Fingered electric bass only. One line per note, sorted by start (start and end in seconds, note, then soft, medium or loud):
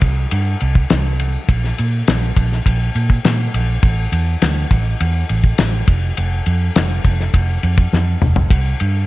0.02 0.24 C2 medium
0.32 0.54 G2 medium
0.62 0.84 C2 medium
0.91 1.36 C2 medium
1.49 1.71 A#1 loud
1.79 2.01 A#2 medium
2.08 2.30 A#1 medium
2.37 2.59 A#1 medium
2.66 2.88 A#1 medium
2.95 3.18 A#2 medium
3.25 3.47 A#2 medium
3.54 3.76 A#1 medium
3.83 4.06 A1 loud
4.12 4.35 E2 medium
4.42 4.64 D2 medium
4.71 4.93 A1 medium
5.01 5.23 E2 medium
5.30 5.52 A1 medium
5.59 5.81 A1 medium
5.88 6.10 F1 medium
6.18 6.40 F1 medium
6.47 6.69 F2 medium
6.76 6.98 F1 medium
7.05 7.27 F1 medium
7.34 7.56 F1 medium
7.63 7.86 F2 medium
7.93 8.15 F2 medium
8.23 8.45 F1 medium
8.51 8.73 C2 medium
8.81 9.03 G2 medium